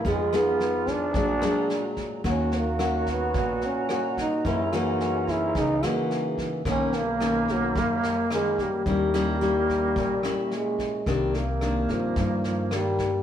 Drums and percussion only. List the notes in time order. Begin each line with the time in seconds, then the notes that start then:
0.05 kick, snare
0.33 cross-stick, snare
0.60 snare
0.87 kick, snare
1.14 kick, snare
1.42 cross-stick, snare
1.70 snare
1.97 kick, snare
2.24 kick, cross-stick, snare
2.52 snare
2.79 cross-stick, snare
3.06 kick, snare
3.34 kick, snare
3.61 snare
3.89 cross-stick, snare
4.17 kick, snare
4.45 kick, snare
4.73 cross-stick, snare
5.00 snare
5.27 kick, snare
5.55 kick, snare
5.83 cross-stick, snare
6.11 snare
6.38 kick, snare
6.65 kick, cross-stick, snare
6.93 snare
7.20 cross-stick, snare
7.48 kick, snare
7.76 kick, snare
8.03 snare
8.31 cross-stick, snare
8.58 kick, snare
8.86 kick, snare
9.14 cross-stick, snare
9.42 snare
9.69 kick, snare
9.96 kick, snare
10.23 cross-stick, snare
10.51 snare
10.79 kick, snare
11.06 kick, cross-stick, snare
11.34 snare
11.61 cross-stick, snare
11.89 kick, snare
12.16 kick, snare
12.44 snare
12.71 cross-stick, snare
12.98 kick, snare